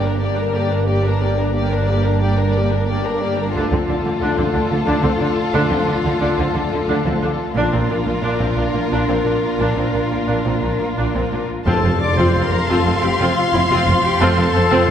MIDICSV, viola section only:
0, 0, Header, 1, 2, 480
1, 0, Start_track
1, 0, Key_signature, -1, "major"
1, 0, Tempo, 334821
1, 2216, Time_signature, 12, 3, 24, 8
1, 12285, Tempo, 344037
1, 17565, Tempo, 336511
1, 21204, End_track
2, 0, Start_track
2, 0, Title_t, "Viola section"
2, 0, Program_c, 0, 48
2, 42, Note_on_c, 0, 62, 36
2, 286, Note_off_c, 0, 62, 0
2, 287, Note_on_c, 0, 58, 36
2, 511, Note_off_c, 0, 58, 0
2, 520, Note_on_c, 0, 62, 33
2, 752, Note_on_c, 0, 58, 40
2, 765, Note_off_c, 0, 62, 0
2, 1003, Note_off_c, 0, 58, 0
2, 1017, Note_on_c, 0, 62, 34
2, 1254, Note_on_c, 0, 58, 38
2, 1256, Note_off_c, 0, 62, 0
2, 1478, Note_off_c, 0, 58, 0
2, 1490, Note_on_c, 0, 62, 36
2, 1733, Note_off_c, 0, 62, 0
2, 1746, Note_on_c, 0, 58, 39
2, 1981, Note_off_c, 0, 58, 0
2, 1989, Note_on_c, 0, 62, 41
2, 2213, Note_on_c, 0, 58, 42
2, 2222, Note_off_c, 0, 62, 0
2, 2437, Note_off_c, 0, 58, 0
2, 2460, Note_on_c, 0, 62, 38
2, 2697, Note_off_c, 0, 62, 0
2, 2708, Note_on_c, 0, 58, 36
2, 2940, Note_off_c, 0, 58, 0
2, 2953, Note_on_c, 0, 62, 40
2, 3183, Note_off_c, 0, 62, 0
2, 3183, Note_on_c, 0, 58, 35
2, 3400, Note_on_c, 0, 62, 35
2, 3401, Note_off_c, 0, 58, 0
2, 3646, Note_off_c, 0, 62, 0
2, 3647, Note_on_c, 0, 58, 44
2, 3877, Note_on_c, 0, 62, 39
2, 3888, Note_off_c, 0, 58, 0
2, 4117, Note_on_c, 0, 58, 41
2, 4122, Note_off_c, 0, 62, 0
2, 4345, Note_off_c, 0, 58, 0
2, 4367, Note_on_c, 0, 62, 38
2, 4604, Note_on_c, 0, 58, 43
2, 4609, Note_off_c, 0, 62, 0
2, 4847, Note_off_c, 0, 58, 0
2, 4847, Note_on_c, 0, 62, 38
2, 5080, Note_off_c, 0, 62, 0
2, 5097, Note_on_c, 0, 62, 48
2, 5316, Note_off_c, 0, 62, 0
2, 5331, Note_on_c, 0, 60, 41
2, 5426, Note_off_c, 0, 60, 0
2, 5561, Note_on_c, 0, 62, 38
2, 5658, Note_off_c, 0, 62, 0
2, 5808, Note_on_c, 0, 57, 37
2, 5904, Note_off_c, 0, 57, 0
2, 6042, Note_on_c, 0, 62, 59
2, 6267, Note_off_c, 0, 62, 0
2, 6270, Note_on_c, 0, 60, 36
2, 6369, Note_off_c, 0, 60, 0
2, 6497, Note_on_c, 0, 62, 43
2, 6598, Note_off_c, 0, 62, 0
2, 6744, Note_on_c, 0, 57, 38
2, 6844, Note_off_c, 0, 57, 0
2, 6969, Note_on_c, 0, 62, 62
2, 7207, Note_off_c, 0, 62, 0
2, 7221, Note_on_c, 0, 60, 41
2, 7321, Note_off_c, 0, 60, 0
2, 7445, Note_on_c, 0, 62, 42
2, 7547, Note_off_c, 0, 62, 0
2, 7941, Note_on_c, 0, 62, 60
2, 8166, Note_on_c, 0, 60, 38
2, 8172, Note_off_c, 0, 62, 0
2, 8269, Note_off_c, 0, 60, 0
2, 8414, Note_on_c, 0, 62, 44
2, 8515, Note_off_c, 0, 62, 0
2, 8663, Note_on_c, 0, 57, 43
2, 8762, Note_off_c, 0, 57, 0
2, 8897, Note_on_c, 0, 62, 54
2, 9130, Note_off_c, 0, 62, 0
2, 9138, Note_on_c, 0, 60, 33
2, 9238, Note_off_c, 0, 60, 0
2, 9380, Note_on_c, 0, 62, 46
2, 9480, Note_off_c, 0, 62, 0
2, 9619, Note_on_c, 0, 57, 44
2, 9719, Note_off_c, 0, 57, 0
2, 9860, Note_on_c, 0, 62, 54
2, 10093, Note_off_c, 0, 62, 0
2, 10113, Note_on_c, 0, 60, 46
2, 10211, Note_off_c, 0, 60, 0
2, 10347, Note_on_c, 0, 62, 53
2, 10446, Note_off_c, 0, 62, 0
2, 10839, Note_on_c, 0, 62, 56
2, 11063, Note_off_c, 0, 62, 0
2, 11082, Note_on_c, 0, 60, 38
2, 11178, Note_off_c, 0, 60, 0
2, 11324, Note_on_c, 0, 62, 37
2, 11419, Note_off_c, 0, 62, 0
2, 11563, Note_on_c, 0, 58, 37
2, 11659, Note_off_c, 0, 58, 0
2, 11797, Note_on_c, 0, 62, 55
2, 12022, Note_off_c, 0, 62, 0
2, 12051, Note_on_c, 0, 60, 31
2, 12145, Note_off_c, 0, 60, 0
2, 12291, Note_on_c, 0, 62, 36
2, 12383, Note_off_c, 0, 62, 0
2, 12524, Note_on_c, 0, 58, 42
2, 12617, Note_off_c, 0, 58, 0
2, 12773, Note_on_c, 0, 62, 51
2, 12986, Note_off_c, 0, 62, 0
2, 13010, Note_on_c, 0, 60, 36
2, 13102, Note_off_c, 0, 60, 0
2, 13239, Note_on_c, 0, 62, 45
2, 13334, Note_off_c, 0, 62, 0
2, 13730, Note_on_c, 0, 62, 47
2, 13947, Note_off_c, 0, 62, 0
2, 13967, Note_on_c, 0, 60, 29
2, 14061, Note_off_c, 0, 60, 0
2, 14208, Note_on_c, 0, 62, 35
2, 14302, Note_off_c, 0, 62, 0
2, 14432, Note_on_c, 0, 58, 29
2, 14530, Note_off_c, 0, 58, 0
2, 14654, Note_on_c, 0, 62, 42
2, 14891, Note_off_c, 0, 62, 0
2, 14908, Note_on_c, 0, 60, 28
2, 15007, Note_off_c, 0, 60, 0
2, 15148, Note_on_c, 0, 62, 31
2, 15247, Note_off_c, 0, 62, 0
2, 15402, Note_on_c, 0, 58, 38
2, 15498, Note_off_c, 0, 58, 0
2, 15636, Note_on_c, 0, 62, 42
2, 15863, Note_off_c, 0, 62, 0
2, 15873, Note_on_c, 0, 60, 38
2, 15972, Note_off_c, 0, 60, 0
2, 16128, Note_on_c, 0, 62, 38
2, 16224, Note_off_c, 0, 62, 0
2, 16604, Note_on_c, 0, 60, 59
2, 16608, Note_on_c, 0, 65, 59
2, 16828, Note_off_c, 0, 60, 0
2, 16830, Note_off_c, 0, 65, 0
2, 16855, Note_on_c, 0, 60, 35
2, 16860, Note_on_c, 0, 65, 39
2, 16949, Note_off_c, 0, 60, 0
2, 16952, Note_off_c, 0, 65, 0
2, 17327, Note_on_c, 0, 60, 56
2, 17331, Note_on_c, 0, 65, 57
2, 17547, Note_off_c, 0, 60, 0
2, 17549, Note_off_c, 0, 65, 0
2, 17569, Note_on_c, 0, 60, 42
2, 17574, Note_on_c, 0, 65, 36
2, 17665, Note_off_c, 0, 60, 0
2, 17669, Note_off_c, 0, 65, 0
2, 17806, Note_on_c, 0, 60, 40
2, 17811, Note_off_c, 0, 60, 0
2, 17811, Note_on_c, 0, 60, 34
2, 17907, Note_off_c, 0, 60, 0
2, 18055, Note_on_c, 0, 60, 58
2, 18056, Note_on_c, 0, 65, 62
2, 18278, Note_off_c, 0, 60, 0
2, 18278, Note_off_c, 0, 65, 0
2, 18303, Note_on_c, 0, 65, 53
2, 18305, Note_on_c, 0, 60, 44
2, 18397, Note_off_c, 0, 65, 0
2, 18399, Note_off_c, 0, 60, 0
2, 18522, Note_on_c, 0, 60, 54
2, 18528, Note_off_c, 0, 60, 0
2, 18528, Note_on_c, 0, 60, 49
2, 18626, Note_off_c, 0, 60, 0
2, 18773, Note_on_c, 0, 65, 57
2, 18774, Note_on_c, 0, 60, 64
2, 18999, Note_off_c, 0, 65, 0
2, 19000, Note_off_c, 0, 60, 0
2, 19262, Note_on_c, 0, 60, 57
2, 19274, Note_off_c, 0, 60, 0
2, 19274, Note_on_c, 0, 60, 48
2, 19367, Note_off_c, 0, 60, 0
2, 19499, Note_on_c, 0, 65, 67
2, 19500, Note_on_c, 0, 60, 70
2, 19705, Note_off_c, 0, 65, 0
2, 19712, Note_off_c, 0, 60, 0
2, 19722, Note_on_c, 0, 65, 43
2, 19729, Note_on_c, 0, 60, 48
2, 19820, Note_off_c, 0, 65, 0
2, 19825, Note_off_c, 0, 60, 0
2, 20210, Note_on_c, 0, 65, 76
2, 20212, Note_on_c, 0, 60, 77
2, 20434, Note_off_c, 0, 65, 0
2, 20435, Note_off_c, 0, 60, 0
2, 20449, Note_on_c, 0, 65, 61
2, 20451, Note_on_c, 0, 60, 55
2, 20545, Note_off_c, 0, 65, 0
2, 20546, Note_off_c, 0, 60, 0
2, 20695, Note_on_c, 0, 60, 49
2, 20789, Note_off_c, 0, 60, 0
2, 20923, Note_on_c, 0, 60, 84
2, 20926, Note_on_c, 0, 65, 71
2, 21145, Note_off_c, 0, 60, 0
2, 21147, Note_off_c, 0, 65, 0
2, 21204, End_track
0, 0, End_of_file